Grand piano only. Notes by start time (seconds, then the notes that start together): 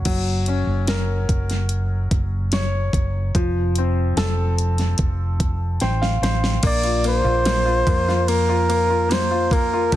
0.05 F#3
0.48 C#4
0.89 A#4
2.53 C#5
3.35 F3
3.78 C4
4.17 A4
5.81 C5 G5
6.02 F5
6.23 C5
6.63 A#3
6.84 F4
7.05 A#3
7.24 F4
7.46 A#3
7.65 F4
7.87 A#3
8.08 F4
8.28 A#3
8.49 F4
8.69 A#3
8.90 F4
9.09 A#3
9.31 F4
9.52 A#3
9.73 F4